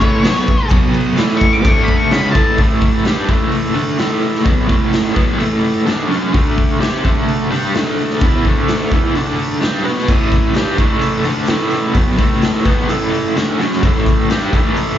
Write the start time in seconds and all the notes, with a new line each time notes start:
Already playing: C#5
0.00 A2 E3 A3, kick, crash, shaker
0.23 B2 F#3 B3, snare, crash, shaker
0.35 shaker
0.47 muted overdriven electric guitar stroke, kick, crash, shaker
0.59 shaker
0.69 B2 F#3 B3, kick, crash, shaker
0.82 shaker
0.93 crash, shaker
1.05 shaker
1.17 A2 E3 A3, snare, crash, shaker
1.28 shaker
1.37 C#6, crash, shaker
1.41 kick
1.53 D6, shaker
1.64 D3 A3 D4 C#6, kick, crash, shaker
1.77 shaker
1.84 B5, crash
1.88 kick
1.98 C#6, shaker
2.11 C#3 G#3 C#4 B5, snare, crash, shaker
2.31 A2 E3 A5, kick, crash
2.35 A3, shaker
2.49 shaker
2.58 A2 E3 A3, kick, open hi-hat
2.82 kick, open hi-hat
3.05 G3 D4 G4, snare, open hi-hat
3.29 A2 E3 A3, kick, open hi-hat
3.52 open hi-hat
3.74 D3 A3 D4, open hi-hat
3.98 A2 E3 A3, snare, open hi-hat
4.22 open hi-hat
4.35 snare
4.44 B2 F#3 B3, kick, open hi-hat
4.68 A2 E3 A3, kick, open hi-hat
4.93 snare, open hi-hat
5.15 B2 F#3 B3, kick, open hi-hat
5.38 A2 E3 A3, open hi-hat
5.64 open hi-hat
5.86 D3 A3 D4, snare, open hi-hat
6.08 F#3 C#4 F#4, open hi-hat
6.13 snare
6.33 D3 A3 D4, kick, open hi-hat
6.58 kick, open hi-hat
6.80 C4 G4 C5, snare, open hi-hat
7.04 D3 A3 D4, kick, open hi-hat
7.28 open hi-hat
7.51 G3 D4 G4, open hi-hat
7.74 D3 A3 D4, snare, open hi-hat
7.98 open hi-hat
8.11 snare
8.20 E3 B3 E4, kick, open hi-hat
8.45 D3 A3 D4, kick, open hi-hat
8.68 snare, open hi-hat
8.92 E3 B3 E4, kick, open hi-hat
9.15 D3 A3 D4, open hi-hat
9.39 open hi-hat
9.61 G3 D4 G4, snare, open hi-hat
9.84 B3 F#4 B4, snare, open hi-hat
9.98 snare
10.08 A2 E3 A3, kick, crash, shaker
10.32 kick, open hi-hat, shaker
10.54 G3 D4 G4, snare, open hi-hat, shaker
10.78 A2 E3 A3, kick, open hi-hat, shaker
11.01 open hi-hat, shaker
11.24 D3 A3 D4, open hi-hat, shaker
11.46 A2 E3 A3, snare, open hi-hat, shaker
11.70 snare, open hi-hat, shaker
11.94 B2 F#3 B3, kick, open hi-hat, shaker
12.18 A2 E3 A3, kick, open hi-hat, shaker
12.42 snare, open hi-hat, shaker
12.65 B2 F#3 B3, kick, open hi-hat, shaker
12.89 A2 E3 A3, open hi-hat, shaker
13.13 open hi-hat, shaker
13.36 D3 A3 D4, snare, open hi-hat, shaker
13.59 F#3 C#4 F#4, snare, open hi-hat, shaker
13.73 snare
13.83 A2 E3 A3, kick, open hi-hat, shaker
14.06 kick, open hi-hat, shaker
14.30 G3 D4 G4, snare, open hi-hat, shaker
14.53 A2 E3 A3, kick, open hi-hat, shaker
14.76 open hi-hat, shaker